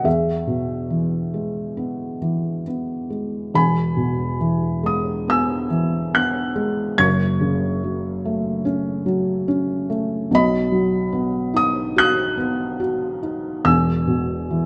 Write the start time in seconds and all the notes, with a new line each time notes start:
0.04 E2 G#4 E5
0.47 B2
0.90 E3
1.34 G#3
1.77 B3
2.22 E3
2.67 B3
3.10 G#3
3.54 E1 E2 G#5 B5
3.97 B2
4.40 E3
4.83 G#3 D#6
5.28 B3 G#5 E6
5.70 E3
6.14 B3 F#6
6.56 G#3
6.98 F#1 F#2 C#6 G#6
7.41 C#3
7.84 F#3
8.25 A3
8.65 C#4
9.06 F#3
9.48 C#4
9.90 A3
10.31 B1 B2 D#5 B5
10.72 F#3
11.12 B3
11.54 D#4 D#6
11.96 F#4 D#6 F#6
12.38 B3
12.80 F#4
13.23 D#4
13.64 E1 E2 G#5 E6
14.07 B2
14.51 E3